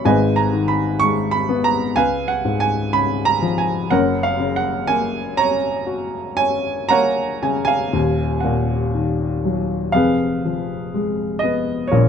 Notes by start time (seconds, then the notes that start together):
0.05 G#1 G#2 B4 D#5 G#5
0.36 A#5
0.53 D#3
0.68 B5
1.00 G#3 C#6
1.31 B5
1.49 B3
1.64 A#5
1.96 C#2 B4 F5 G#5
2.28 F#5
2.45 G#2
2.60 G#5
2.93 C#3 B5
3.25 A#5
3.42 F3
3.58 G#5
3.90 F#1 F#2 A#4 C#5 F#5
4.23 F5
4.39 C#3
4.56 F#5
4.87 A#3 G#5
5.37 C#4 C#5 A#5
5.87 F#4
6.37 C#4 G#5
6.89 A#3 C#5 F#5 A#5
7.43 C#3 G#5
7.65 F5 G#5
7.93 D#1 D#2
8.40 A#2 A#4 F#5
8.94 D#3
9.45 F#3
9.92 F1 F2 G#4 B4 F5
10.45 F3
10.94 G#3
11.39 D#5
11.43 B3
11.87 F4 A#4 C#5
11.92 A#1 A#2